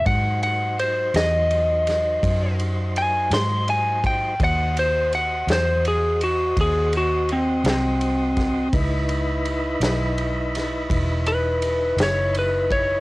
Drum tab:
RD |xxxxxxxxxxxx|xxxxxxxxxxxx|xxxxxxxxxxxx|
SD |---o-o---o--|---o-----o-o|---o-o---o--|
BD |o-----o----o|o-----o----o|o-----o----o|